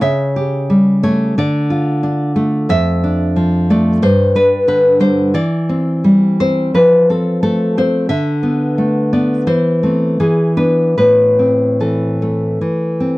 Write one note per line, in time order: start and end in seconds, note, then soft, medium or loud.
0.01 1.33 C#3 medium
0.01 0.99 E5 medium
0.36 1.38 G4 soft
0.70 1.37 G3 soft
1.03 1.37 A3 soft
1.03 1.36 C#5 medium
1.38 2.66 D3 medium
1.38 2.33 D5 medium
1.70 2.69 F4 soft
2.03 2.35 D4 soft
2.36 2.69 A3 soft
2.69 3.98 F2 medium
2.69 3.65 E5 medium
3.04 4.03 D4 soft
3.36 4.02 F3 soft
3.70 4.03 A3 soft
3.70 4.02 D5 medium
4.02 5.31 G2 medium
4.02 4.34 C5 medium
4.35 5.35 D4 soft
4.35 4.67 B4 medium
4.68 5.35 D3 soft
4.68 4.99 B4 medium
5.00 5.34 G3 soft
5.00 5.33 C5 medium
5.34 6.70 E3 soft
5.34 6.35 D5 medium
5.69 6.39 C4 soft
6.04 6.74 G3 soft
6.40 6.75 C4 soft
6.40 6.73 C5 medium
6.74 8.07 F3 medium
6.74 7.08 B4 medium
7.10 7.76 C4 soft
7.10 7.41 A4 soft
7.43 8.09 A3 soft
7.43 7.75 A4 medium
7.78 8.11 C4 soft
7.78 8.09 C5 medium
8.09 9.45 D3 soft
8.09 9.09 E5 medium
8.43 9.12 B3 soft
8.78 9.46 A3 soft
9.13 9.49 B3 soft
9.13 9.47 D5 soft
9.47 10.18 E3 soft
9.47 10.18 C5 medium
9.83 10.17 A3 soft
9.83 10.17 C4 soft
10.20 10.96 E3 soft
10.20 10.56 G#4 soft
10.57 10.94 B3 soft
10.57 10.94 D4 soft
10.57 10.96 B4 soft
10.98 12.58 A2 soft
10.98 11.77 B4 medium
11.39 12.62 C4 soft
11.80 12.60 E3 soft
11.80 13.18 A4 soft
12.22 13.18 A3 soft
12.61 13.18 E3 soft
13.00 13.18 C4 soft